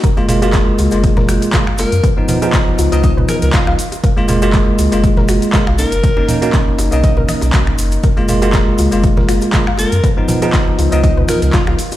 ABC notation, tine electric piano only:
X:1
M:4/4
L:1/16
Q:"Swing 16ths" 1/4=120
K:F#
V:1 name="Tine electric piano"
z [G,A,E] [G,A,E] [G,A,E]4 [G,A,E]4- [G,A,E] [G,A,E] z [G,A,E] z | z [E,B,D] [E,B,D] [E,B,D]4 [E,B,D]6- [E,B,D] z2 | z [G,A,E] [G,A,E] [G,A,E]4 [G,A,E]4- [G,A,E] [G,A,E] z [A,CD] z | z [A,CD] [A,CD] [A,CD]4 [A,CD]8- [A,CD] |
z [G,A,E] [G,A,E] [G,A,E]4 [G,A,E]4- [G,A,E] [G,A,E] z [G,A,E] z | z [E,B,D] [E,B,D] [E,B,D]4 [E,B,D]6- [E,B,D] z2 |]